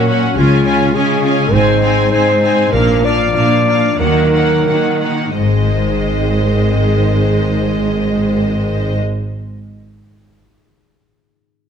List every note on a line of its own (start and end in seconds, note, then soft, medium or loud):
0.00 0.31 A#2 soft
0.00 0.40 A#2 soft
0.00 0.37 F#3 soft
0.00 0.65 C#4 soft
0.00 1.53 C#4 soft
0.00 0.40 A#4 soft
0.08 0.36 C#4 soft
0.08 0.36 F#4 soft
0.08 0.40 F#4 soft
0.08 0.36 F#5 soft
0.37 0.85 C#2 soft
0.37 0.87 C#3 soft
0.37 1.55 C#3 soft
0.37 2.73 G#3 soft
0.37 0.64 C#4 soft
0.37 0.65 F4 soft
0.37 0.96 F4 medium
0.37 0.64 G#5 soft
0.65 0.93 C#4 soft
0.65 1.55 C#4 soft
0.65 0.93 F4 soft
0.65 0.94 G#5 soft
0.94 1.45 C#3 soft
0.94 1.23 C#4 soft
0.94 1.21 F4 soft
0.94 2.12 G#4 soft
0.94 1.54 G#4 medium
0.94 1.23 G#5 soft
1.22 1.52 C#4 soft
1.22 1.51 F4 soft
1.22 1.55 F4 soft
1.22 1.53 G#5 soft
1.51 2.02 G#1 soft
1.51 2.05 G#2 soft
1.51 2.75 G#2 soft
1.51 1.82 C4 soft
1.51 1.80 D#4 soft
1.51 2.73 D#4 soft
1.51 2.11 C5 medium
1.51 1.82 G#5 soft
1.81 2.75 C4 soft
1.81 2.11 C4 soft
1.81 2.09 D#4 soft
1.81 2.12 G#5 soft
2.11 2.65 G#2 soft
2.11 2.42 C4 soft
2.11 2.41 D#4 soft
2.11 2.76 G#4 soft
2.11 2.74 C5 medium
2.11 2.42 G#5 soft
2.42 2.72 C4 soft
2.42 2.72 D#4 soft
2.42 2.75 D#4 soft
2.42 2.73 G#5 soft
2.72 3.24 A#1 soft
2.72 3.28 A#2 medium
2.72 4.02 A#2 soft
2.72 4.00 F3 soft
2.72 3.04 A#3 soft
2.72 3.02 D4 soft
2.72 3.97 D4 soft
2.72 3.06 A#4 medium
2.72 3.03 F5 soft
3.03 5.41 A#3 soft
3.03 3.34 A#3 soft
3.03 3.33 D4 soft
3.03 3.98 D5 medium
3.03 3.33 F5 soft
3.34 3.92 A#2 soft
3.34 3.66 A#3 soft
3.34 3.65 D4 soft
3.34 4.02 F4 soft
3.34 3.66 F5 soft
3.66 4.00 A#3 soft
3.66 3.99 D4 soft
3.66 4.03 D4 soft
3.66 3.99 F5 soft
3.99 4.57 D#2 soft
3.99 4.59 D#3 soft
3.99 5.41 D#3 soft
3.99 5.02 F#3 soft
3.99 4.33 A#3 soft
3.99 5.02 D#4 soft
3.99 4.32 D#4 soft
3.99 5.00 A#4 medium
3.99 4.31 F#5 soft
4.32 4.68 A#3 soft
4.32 4.66 D#4 soft
4.32 5.59 D#4 soft
4.32 4.66 F#5 soft
4.67 5.30 D#3 soft
4.67 5.03 A#3 soft
4.67 5.01 D#4 soft
4.67 5.41 A#4 soft
4.67 5.00 F#5 soft
5.02 5.39 A#3 soft
5.02 5.37 D#4 soft
5.02 5.41 F#4 soft
5.02 5.37 F#5 soft
5.37 8.97 G#1 soft
5.37 8.97 G#2 soft
5.37 9.67 G#2 soft
5.37 8.97 D#3 soft
5.37 8.98 G#3 soft
5.37 8.97 C4 soft
5.37 8.97 G#4 soft
5.37 8.96 C5 soft
5.37 8.97 D#5 soft
5.46 9.71 G#3 soft
5.53 9.74 C4 soft
5.60 9.78 D#4 soft
5.67 9.81 G#4 soft
5.74 9.85 D#5 soft